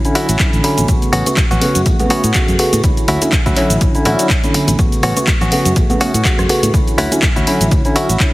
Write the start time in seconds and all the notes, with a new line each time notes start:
0.04 D3 F#3 C#4 E4, closed hi-hat, tambourine, cabasa
0.15 C#4 E4 F#4, open hi-hat, tambourine
0.29 A1, closed hi-hat, tambourine, cabasa
0.39 D3 F#3 C#4 E4, kick, clap, closed hi-hat, cabasa
0.53 A1, closed hi-hat, tambourine, cabasa
0.64 D3 F#3 C#4 E4, muted clean electric guitar stroke, open hi-hat, tambourine
0.77 A1, muted clean electric guitar stroke, closed hi-hat, tambourine, high conga, cabasa
0.88 A1 C#3 A3 B3, kick, closed hi-hat, tambourine, cabasa
1.01 muted fingered electric bass stroke, closed hi-hat, tambourine, cabasa
1.13 A1 B3 C#4 F#4, open hi-hat, tambourine
1.26 C#3 A3 B3 F#4, closed hi-hat, tambourine, high conga, cabasa
1.37 kick, clap, closed hi-hat, tambourine, cabasa
1.50 A1 B3 C#4 F#4, closed hi-hat, tambourine, low conga, cabasa
1.61 C#3 A3 B3 F#4, muted fingered electric bass stroke, open hi-hat, tambourine
1.75 F#2, closed hi-hat, tambourine, cabasa
1.86 A1, kick, closed hi-hat, tambourine, cabasa
1.99 C#3 A3 B3 F#4, closed hi-hat, tambourine, high conga, low conga, cabasa
2.10 B3 C#4 F#4, open hi-hat, tambourine
2.24 A2, closed hi-hat, tambourine, cabasa
2.34 C#3 A3 B3 F#4, kick, clap, closed hi-hat, tambourine, cabasa
2.48 F#2, closed hi-hat, tambourine, cabasa
2.59 C#3 A3 B3 F#4, muted clean electric guitar stroke, open hi-hat, tambourine
2.73 A2, muted clean electric guitar stroke, closed hi-hat, tambourine, high conga, cabasa
2.83 D2 D3 E4, kick, closed hi-hat, tambourine, cabasa
2.97 muted fingered electric bass stroke, closed hi-hat, tambourine, cabasa
3.08 D2 C#4 E4 F#4, open hi-hat, tambourine
3.21 D3 F#3 C#4 E4, closed hi-hat, tambourine, high conga, cabasa
3.32 muted clean electric guitar stroke, kick, clap, closed hi-hat, tambourine, cabasa
3.46 D2 C#4 E4 F#4, kick, closed hi-hat, tambourine, cabasa
3.56 D3 F#3 C#4 E4, muted fingered electric bass stroke, clap, open hi-hat, tambourine
3.70 A1, closed hi-hat, tambourine, cabasa
3.81 A1, kick, closed hi-hat, tambourine, cabasa
3.94 D3 F#3 C#4 E4, muted fingered electric bass stroke, closed hi-hat, tambourine, cabasa
4.05 A1 D3 F#3 C#4 E4 F#4, open hi-hat, tambourine, high conga
4.19 closed hi-hat, tambourine, cabasa
4.30 kick, clap, closed hi-hat, tambourine, cabasa
4.42 D3 F#3 C#4 E4, closed hi-hat, tambourine, high conga, cabasa
4.54 muted fingered electric bass stroke, muted clean electric guitar stroke, open hi-hat, tambourine
4.67 A1, muted clean electric guitar stroke, closed hi-hat, tambourine, high conga, cabasa
4.78 A1 C#3 A3 B3 F#4, kick, closed hi-hat, tambourine, cabasa
4.92 closed hi-hat, tambourine, cabasa
5.03 A1 B3 C#4 F#4, cross-stick, open hi-hat, tambourine
5.16 C#3 A3 B3 F#4, closed hi-hat, tambourine, high conga, cabasa
5.27 kick, clap, closed hi-hat, tambourine, cabasa
5.41 A1 B3 C#4 F#4, closed hi-hat, tambourine, low conga, cabasa
5.51 C#3 A3 B3 F#4, open hi-hat, tambourine
5.65 F#2, closed hi-hat, tambourine, cabasa
5.76 A1, kick, closed hi-hat, tambourine, cabasa
5.89 C#3 A3 B3 F#4, closed hi-hat, tambourine, high conga, low conga, cabasa
6.00 B3 C#4 F#4, open hi-hat, tambourine
6.14 A2, closed hi-hat, tambourine, cabasa
6.24 C#3 A3 B3 F#4, kick, clap, closed hi-hat, tambourine, cabasa
6.39 F#2, cross-stick, closed hi-hat, tambourine, cabasa
6.49 C#3 A3 B3 F#4, muted clean electric guitar stroke, open hi-hat, tambourine
6.63 A2, muted clean electric guitar stroke, closed hi-hat, tambourine, high conga, cabasa
6.74 D2 D3 E4, kick, closed hi-hat, tambourine, cabasa
6.87 muted fingered electric bass stroke, closed hi-hat, tambourine, cabasa
6.98 D2 C#4 E4 F#4, cross-stick, open hi-hat, tambourine
7.11 D3 F#3 C#4 E4, closed hi-hat, tambourine, high conga, cabasa
7.22 muted clean electric guitar stroke, kick, clap, closed hi-hat, cabasa
7.36 D2 C#4 E4 F#4, closed hi-hat, tambourine, cabasa
7.47 D3 F#3 C#4 E4, muted fingered electric bass stroke, open hi-hat, tambourine
7.60 A1, closed hi-hat, tambourine, cabasa
7.71 D2, kick, closed hi-hat, tambourine, cabasa
7.85 D3 F#3 C#4 E4, closed hi-hat, tambourine, cabasa
7.96 C#4 E4 F#4, open hi-hat, tambourine
8.09 A1, closed hi-hat, tambourine, cabasa
8.19 D3 F#3 C#4 E4, kick, clap, closed hi-hat, tambourine, cabasa